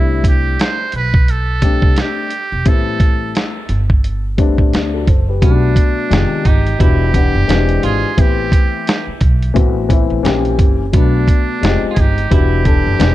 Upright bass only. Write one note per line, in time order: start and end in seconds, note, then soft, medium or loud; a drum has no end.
0.00 0.55 C2 medium
0.93 1.79 B1 medium
1.82 1.95 C2 medium
2.52 2.66 E1 medium
2.66 3.31 A1 loud
3.69 4.55 G1 medium
4.59 4.71 A1 medium
4.73 5.05 D2 loud
5.07 5.39 F#1 medium
5.42 5.73 B1 loud
6.11 6.29 F1 loud
6.32 muted upright bass stroke soft
6.45 6.77 G1 medium
6.80 7.31 E1 loud
7.35 7.48 F#1 medium
7.49 7.80 E1 loud
7.84 8.02 G#1 medium
8.18 8.49 A1 loud
9.07 muted upright bass stroke soft
9.21 9.53 B1 medium
9.56 10.07 A1 loud
10.10 10.23 A1 medium
10.24 10.56 A#1 loud
10.59 10.91 F#1 medium
10.94 11.25 B1 loud
11.63 11.81 F1 medium
11.83 muted upright bass stroke medium
11.97 12.28 G1 medium
12.31 12.82 E1 loud
12.87 12.99 F#1 medium
13.00 13.15 E1 loud